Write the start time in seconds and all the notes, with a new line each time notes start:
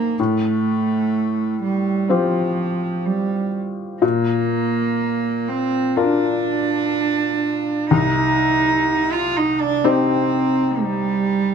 Already playing: G#2 A#3 C4 D#4 G#4
0.18 A2 A3
1.63 G3
2.09 F3 C4 F4 G4
3.06 G3
4.02 A#2 A#3
5.48 C4
5.96 D4 F4 A#4
7.91 C2 D#4
9.12 F4
9.36 D#4
9.60 D4
9.84 C4 D#4 G4
10.82 G3